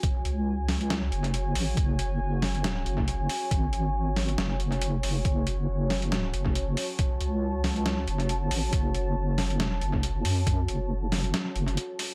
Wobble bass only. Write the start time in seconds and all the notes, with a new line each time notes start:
0.25 C#2
1.12 F#1
1.55 A1
1.77 F#1
2.21 F#1
2.86 F#1
3.51 G#1
4.38 F#1
5.03 F#1
5.25 F#1
5.68 F#1
6.34 F#1
7.21 C#2
8.08 F#1
8.51 A1
8.73 F#1
9.16 F#1
9.61 F1
9.81 F#1
10.25 F#2
10.68 F#1
11.55 F#1